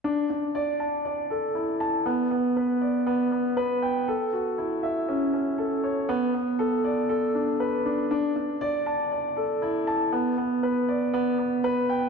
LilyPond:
\new Staff \with { instrumentName = "Grand piano" } { \time 4/4 \key d \major \tempo 4 = 119 d'8 d'8 d''8 a''8 d''8 a'8 e'8 a''8 | b8 b8 b'8 d''8 b8 b8 b'8 g''8 | a'8 fis'8 e'8 e''8 cis'8 cis'8 a'8 cis''8 | b8 b8 a'8 d''8 a'8 d'8 b'8 d'8 |
d'8 d'8 d''8 a''8 d''8 a'8 e'8 a''8 | b8 b8 b'8 d''8 b8 b8 b'8 g''8 | }